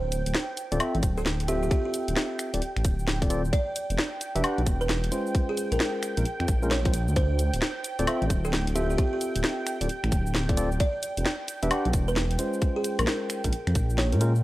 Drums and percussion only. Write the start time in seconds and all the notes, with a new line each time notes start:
0.12 closed hi-hat, shaker
0.26 closed hi-hat, shaker
0.34 snare, shaker
0.57 closed hi-hat, shaker
0.72 closed hi-hat, shaker
0.80 closed hi-hat, high woodblock, shaker
0.95 closed hi-hat
1.03 kick, closed hi-hat, shaker
1.17 shaker
1.26 snare, shaker
1.40 closed hi-hat
1.48 closed hi-hat, shaker
1.63 shaker
1.71 kick, closed hi-hat, shaker
1.94 closed hi-hat, shaker
2.08 closed hi-hat, shaker
2.16 snare, shaker
2.39 finger snap, closed hi-hat, shaker
2.54 closed hi-hat, shaker
2.62 closed hi-hat, shaker
2.77 finger snap, closed hi-hat
2.85 kick, closed hi-hat, shaker
2.99 shaker
3.08 snare, shaker
3.22 kick, closed hi-hat
3.30 closed hi-hat, shaker
3.45 shaker
3.53 kick, closed hi-hat, shaker
3.76 closed hi-hat, shaker
3.90 closed hi-hat, shaker
3.98 snare, shaker
4.21 closed hi-hat, shaker
4.36 closed hi-hat, shaker
4.44 closed hi-hat, high woodblock, shaker
4.58 closed hi-hat
4.66 kick, closed hi-hat, shaker
4.81 shaker
4.89 snare, shaker
5.04 closed hi-hat
5.12 closed hi-hat, shaker
5.26 shaker
5.35 kick, closed hi-hat, shaker
5.57 closed hi-hat, shaker
5.72 closed hi-hat, shaker
5.80 snare, shaker
6.03 finger snap, closed hi-hat, shaker
6.17 closed hi-hat, shaker
6.25 closed hi-hat, shaker
6.40 finger snap, closed hi-hat
6.48 kick, closed hi-hat, shaker
6.63 shaker
6.71 snare, shaker
6.85 kick, closed hi-hat
6.94 closed hi-hat, shaker
7.08 shaker
7.16 kick, closed hi-hat, shaker
7.39 closed hi-hat, shaker
7.54 closed hi-hat, shaker
7.62 snare, shaker
7.84 closed hi-hat, shaker
7.99 closed hi-hat, shaker
8.07 closed hi-hat, high woodblock, shaker
8.22 closed hi-hat
8.30 kick, closed hi-hat, shaker
8.45 shaker
8.53 snare, shaker
8.67 closed hi-hat
8.76 closed hi-hat, shaker
8.90 shaker
8.98 kick, closed hi-hat, shaker
9.21 closed hi-hat, shaker
9.36 closed hi-hat, shaker
9.44 snare, shaker
9.67 finger snap, closed hi-hat, shaker
9.81 closed hi-hat, shaker
9.89 closed hi-hat, shaker
10.04 finger snap, closed hi-hat
10.12 kick, closed hi-hat, shaker
10.26 shaker
10.35 snare, shaker
10.49 kick, closed hi-hat
10.57 closed hi-hat, shaker
10.72 shaker
10.80 kick, closed hi-hat, shaker
11.03 closed hi-hat, shaker
11.17 closed hi-hat, shaker
11.26 snare, shaker
11.48 closed hi-hat, shaker
11.63 closed hi-hat, shaker
11.71 closed hi-hat, high woodblock, shaker
11.85 closed hi-hat
11.93 kick, closed hi-hat, shaker
12.08 shaker
12.16 snare, shaker
12.31 closed hi-hat
12.39 closed hi-hat, shaker
12.53 shaker
12.62 kick, closed hi-hat, shaker
12.84 closed hi-hat, shaker
12.99 closed hi-hat, high woodblock, shaker
13.07 snare, shaker
13.30 finger snap, closed hi-hat, shaker
13.44 kick, closed hi-hat, shaker
13.53 closed hi-hat, shaker
13.67 finger snap, closed hi-hat
13.75 kick, closed hi-hat, shaker
13.90 shaker
13.98 snare, shaker
14.13 closed hi-hat
14.21 closed hi-hat, shaker
14.35 shaker